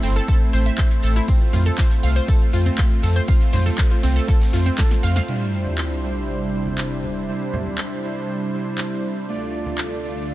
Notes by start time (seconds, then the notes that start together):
Already playing: A3 C4 E4
0.03 G1 A3 C4 E4 C5, open hi-hat, tambourine
0.16 A4, snare, closed hi-hat, cabasa
0.28 A4, kick, closed hi-hat, tambourine, cabasa
0.41 cabasa
0.53 A1 A3 C4 E4 C5, open hi-hat, tambourine
0.66 E5, closed hi-hat, cabasa
0.77 C5, kick, snare, clap, closed hi-hat, tambourine, cabasa
0.91 closed hi-hat, cabasa
1.02 A1 A4, open hi-hat, tambourine
1.16 E4, snare, closed hi-hat, cabasa
1.28 A3 C4 F4 C5, kick, closed hi-hat, tambourine, cabasa
1.41 cabasa
1.53 F2 F4, open hi-hat, tambourine, low conga
1.66 A4, closed hi-hat, high conga, cabasa
1.78 C5, kick, snare, clap, closed hi-hat, tambourine, cabasa
1.91 closed hi-hat, cabasa
2.03 C2 A3 C4 F4 C5 F5, open hi-hat, tambourine
2.16 C5, snare, closed hi-hat, cabasa
2.28 A4, kick, closed hi-hat, tambourine, cabasa
2.41 cabasa
2.53 F2 A3 C4 F4 C5, open hi-hat, tambourine
2.66 C4, closed hi-hat, high conga, cabasa
2.77 F4, kick, snare, clap, closed hi-hat, tambourine, cabasa
2.91 closed hi-hat, cabasa
3.02 F2 A4, open hi-hat, tambourine, high conga
3.16 C5, closed hi-hat, cabasa
3.28 A3 C4 F4 C5 F5, kick, closed hi-hat, tambourine, cabasa
3.41 snare, closed hi-hat, cabasa
3.53 F2 C5, snare, open hi-hat, tambourine, low conga
3.65 A4, snare, closed hi-hat, high conga, cabasa
3.78 kick, snare, clap, closed hi-hat, tambourine, cabasa
3.90 F4, snare, closed hi-hat, cabasa
4.03 C2 A3 C4 F4 C5, open hi-hat, tambourine
4.16 A4, snare, closed hi-hat, cabasa
4.28 A4, kick, snare, closed hi-hat, tambourine, cabasa
4.41 snare, tambourine, cabasa
4.53 F2 A3 C4 F4 C5, snare, open hi-hat, tambourine
4.66 C4, closed hi-hat, cabasa
4.78 A4, kick, snare, clap, closed hi-hat, tambourine, cabasa
4.91 snare, closed hi-hat, cabasa
5.03 F2 F5, snare, open hi-hat, tambourine
5.16 F5, snare, closed hi-hat, high conga, cabasa
5.28 C3 G3 D4 E4 C5, crash, sub drop
5.66 high conga
5.78 clap
6.03 G3 D4 E4 C5
6.53 G3 D4 E4 C5
6.66 high conga
6.78 clap
7.04 high conga
7.28 G3 D4 E4 C5
7.53 low conga
7.66 high conga
7.78 clap
8.03 G3 D4 E4 C5
8.53 G3 D4 E4 C5
8.78 clap
9.28 D2 D3 A3 D4 F4 A4 D5
9.66 high conga
9.78 clap
10.03 A3 D4 F4 D5